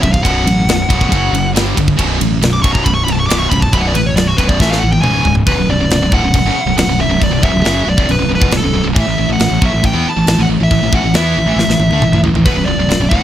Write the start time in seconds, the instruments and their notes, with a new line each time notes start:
0.02 fingered electric bass B0, distorted electric guitar B1 F#2, lead electric guitar E5, kick, ride
0.13 lead electric guitar F5, kick
0.23 fingered electric bass B0, distorted electric guitar B1 F#2 B2, lead electric guitar F#5, kick, ride
0.45 fingered electric bass A1, distorted electric guitar B1 F#2, ride
0.68 fingered electric bass B0, distorted electric guitar B1 F#2, snare, ride
0.89 fingered electric bass B0, distorted electric guitar B1 F#2 B2, kick, ride
1.01 kick
1.12 fingered electric bass F#1, distorted electric guitar F#2 C#3 F#3, kick, ride
1.32 fingered electric bass F#1, distorted electric guitar F#2 C#3, ride
1.55 fingered electric bass G1, distorted electric guitar G2 D3 G3, snare, ride
1.77 fingered electric bass G1, distorted electric guitar G2 D3, kick, ride
1.88 kick
1.97 fingered electric bass B0, distorted electric guitar B1 F#2 B2, kick, ride
2.20 fingered electric bass A1, distorted electric guitar B1 F#2, ride
2.41 fingered electric bass B0, distorted electric guitar B1 F#2, snare, ride
2.53 lead electric guitar D6
2.62 fingered electric bass B0, distorted electric guitar B1 F#2 B2, lead electric guitar C#6, kick, ride
2.73 lead electric guitar A#5, kick
2.84 fingered electric bass B0, distorted electric guitar B1 F#2, lead electric guitar B5, kick, ride
2.94 lead electric guitar C#6
3.04 fingered electric bass B0, distorted electric guitar B1 F#2, lead electric guitar B5, ride
3.12 lead electric guitar A5
3.20 lead electric guitar C#6
3.26 distorted electric guitar B1 F#2 B2, lead electric guitar D6, ride
3.31 fingered electric bass B0, snare
3.40 lead electric guitar C#6
3.50 fingered electric bass B0, distorted electric guitar B1 F#2, lead electric guitar B5, kick, ride
3.60 lead electric guitar A5, kick
3.72 fingered electric bass B0, distorted electric guitar B1 F#2 B2, lead electric guitar B5, kick, ride
3.78 lead electric guitar F#5
3.87 lead electric guitar D5
3.94 fingered electric bass A1, distorted electric guitar B1 F#2, lead electric guitar B4, ride
4.06 lead electric guitar C#5
4.16 fingered electric bass B0, distorted electric guitar B1 F#2, lead electric guitar D5, snare, ride
4.27 lead electric guitar F#4
4.37 fingered electric bass B0, distorted electric guitar B1 F#2 B2, lead electric guitar B4, kick, ride
4.48 lead electric guitar D5, kick
4.60 fingered electric bass A1, distorted electric guitar A2 E3 A3, lead electric guitar E5, kick, snare
4.70 lead electric guitar F5, snare
4.79 distorted electric guitar A2, lead electric guitar F#5
4.83 fingered electric bass A1, distorted electric guitar E3
4.92 lead electric guitar G5, high tom
5.02 fingered electric bass C#1, distorted electric guitar C#2 G#2 C#3, lead electric guitar G#5, mid tom
5.25 fingered electric bass C#1, distorted electric guitar C#2 G#2, floor tom
5.35 floor tom
5.47 fingered electric bass B0, distorted electric guitar B1 F#2, lead electric guitar B4, kick, crash
5.57 fingered electric bass B0, distorted electric guitar B1 F#2
5.69 fingered electric bass B0, distorted electric guitar B1 F#2, lead electric guitar D5
5.79 fingered electric bass B0, distorted electric guitar B1 F#2
5.90 fingered electric bass B0, distorted electric guitar B1 F#2, snare, crash
6.01 fingered electric bass B0, distorted electric guitar B1 F#2
6.12 fingered electric bass D1, distorted electric guitar D2 A2, lead electric guitar F#5, kick
6.24 fingered electric bass B0, distorted electric guitar B1 F#2
6.34 fingered electric bass B0, distorted electric guitar B1 F#2, kick, crash
6.45 fingered electric bass F#1, distorted electric guitar F#2 C#3
6.55 muted fingered electric bass stroke, muted distorted electric guitar stroke
6.66 fingered electric bass B0, distorted electric guitar B1 F#2
6.76 fingered electric bass B0, distorted electric guitar B1 F#2, lead electric guitar F#5, snare, crash
6.88 fingered electric bass B0, distorted electric guitar B1 F#2
6.98 fingered electric bass B0, distorted electric guitar B1 F#2, lead electric guitar E5
7.09 fingered electric bass B0, distorted electric guitar B1 F#2
7.19 fingered electric bass B0, distorted electric guitar B1 F#2, lead electric guitar D5, kick, crash
7.31 fingered electric bass B0, distorted electric guitar B1 F#2
7.42 fingered electric bass B0, distorted electric guitar B1 F#2, lead electric guitar E5, kick
7.52 fingered electric bass B0, distorted electric guitar B1 F#2
7.64 fingered electric bass F#1, distorted electric guitar F#2 C#3 F#3, snare, crash
7.86 fingered electric bass B0, distorted electric guitar B1 F#2, lead electric guitar D5
7.97 fingered electric bass B0, distorted electric guitar B1 F#2, kick
8.08 fingered electric bass B0, distorted electric guitar B1 F#2, lead electric guitar B4, crash
8.19 fingered electric bass B0, distorted electric guitar B1 F#2
8.29 fingered electric bass B0, distorted electric guitar B1 F#2
8.35 lead electric guitar B4
8.39 fingered electric bass E1, distorted electric guitar E2 B2, kick
8.51 fingered electric bass B0, distorted electric guitar B1 F#2, snare, crash
8.57 lead electric guitar A4
8.63 fingered electric bass B0, distorted electric guitar B1 F#2
8.73 fingered electric bass B0, distorted electric guitar B1 F#2
8.83 fingered electric bass B0, distorted electric guitar B1 F#2
8.94 fingered electric bass A1, distorted electric guitar A2 E3, kick, crash
9.00 lead electric guitar E5
9.06 fingered electric bass A1, distorted electric guitar A2 E3
9.18 fingered electric bass A1, distorted electric guitar A2 E3
9.29 fingered electric bass A1, distorted electric guitar A2 E3, lead electric guitar F#5
9.40 fingered electric bass A1, distorted electric guitar A2 E3, snare, crash
9.49 fingered electric bass A1, distorted electric guitar A2 E3
9.61 fingered electric bass B1, distorted electric guitar B2 F#3, kick
9.65 lead electric guitar E5
9.73 fingered electric bass A1, distorted electric guitar A2 E3
9.83 fingered electric bass A1, distorted electric guitar A2 E3, lead electric guitar G5, kick, crash
9.93 fingered electric bass E2, distorted electric guitar E3 B3
10.05 muted distorted electric guitar stroke, muted fingered electric bass stroke
10.09 lead electric guitar A5
10.17 fingered electric bass A1, distorted electric guitar A2 E3
10.27 fingered electric bass A1, distorted electric guitar A2 E3, snare, crash
10.38 fingered electric bass A1, distorted electric guitar A2 E3, lead electric guitar F#5
10.49 fingered electric bass A1, distorted electric guitar A2 E3
10.61 fingered electric bass A1, distorted electric guitar A2 E3, lead electric guitar E5
10.71 fingered electric bass A1, distorted electric guitar A2 E3, kick, crash
10.83 fingered electric bass A1, distorted electric guitar A2 E3
10.93 fingered electric bass A1, distorted electric guitar A2 E3, lead electric guitar F#5, kick
11.04 fingered electric bass A1, distorted electric guitar A2 E3
11.14 fingered electric bass E2, distorted electric guitar E3 B3 E4, lead electric guitar E5, snare, crash
11.37 fingered electric bass A1, distorted electric guitar A2 E3
11.46 fingered electric bass A1, distorted electric guitar A2 E3
11.56 fingered electric bass A1, distorted electric guitar A2 E3, snare
11.68 fingered electric bass A1, distorted electric guitar A2 E3, snare
11.79 fingered electric bass A1, distorted electric guitar A2 E3, high tom
11.89 fingered electric bass D2, distorted electric guitar D3, high tom
11.93 distorted electric guitar A3
12.00 fingered electric bass A1, distorted electric guitar A2 E3, mid tom
12.12 fingered electric bass A1, distorted electric guitar A2 E3, mid tom
12.23 fingered electric bass A1, distorted electric guitar A2 E3, floor tom
12.33 fingered electric bass A1, distorted electric guitar A2 E3, floor tom
12.45 fingered electric bass B0, distorted electric guitar B1 F#2, lead electric guitar B4, kick, crash
12.55 fingered electric bass B0, distorted electric guitar B1 F#2
12.66 fingered electric bass B0, distorted electric guitar B1 F#2, lead electric guitar D5
12.77 fingered electric bass B0, distorted electric guitar B1 F#2
12.88 fingered electric bass B0, distorted electric guitar B1 F#2, snare, crash
13.00 fingered electric bass B0, distorted electric guitar B1 F#2
13.09 fingered electric bass D1, distorted electric guitar D2 A2, lead electric guitar F#5, kick